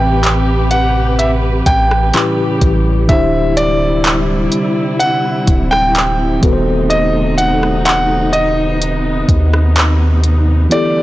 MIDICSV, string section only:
0, 0, Header, 1, 2, 480
1, 0, Start_track
1, 0, Tempo, 952381
1, 1559, Time_signature, 4, 2, 24, 8
1, 5557, End_track
2, 0, Start_track
2, 0, Title_t, "String section"
2, 0, Program_c, 0, 48
2, 0, Note_on_c, 0, 48, 81
2, 0, Note_on_c, 0, 67, 86
2, 0, Note_on_c, 0, 71, 68
2, 1063, Note_off_c, 0, 48, 0
2, 1063, Note_off_c, 0, 67, 0
2, 1077, Note_on_c, 0, 49, 76
2, 1078, Note_on_c, 0, 67, 85
2, 1079, Note_on_c, 0, 55, 74
2, 1539, Note_off_c, 0, 71, 0
2, 1554, Note_off_c, 0, 49, 0
2, 1554, Note_off_c, 0, 67, 0
2, 1557, Note_on_c, 0, 48, 81
2, 1557, Note_on_c, 0, 64, 89
2, 3219, Note_off_c, 0, 55, 0
2, 3221, Note_off_c, 0, 64, 0
2, 3237, Note_on_c, 0, 63, 89
2, 3239, Note_on_c, 0, 57, 72
2, 4190, Note_off_c, 0, 57, 0
2, 4199, Note_on_c, 0, 59, 70
2, 5378, Note_off_c, 0, 48, 0
2, 5378, Note_off_c, 0, 63, 0
2, 5387, Note_off_c, 0, 59, 0
2, 5401, Note_on_c, 0, 67, 85
2, 5402, Note_on_c, 0, 50, 78
2, 5402, Note_on_c, 0, 55, 70
2, 5402, Note_on_c, 0, 57, 71
2, 5557, Note_off_c, 0, 50, 0
2, 5557, Note_off_c, 0, 55, 0
2, 5557, Note_off_c, 0, 57, 0
2, 5557, Note_off_c, 0, 67, 0
2, 5557, End_track
0, 0, End_of_file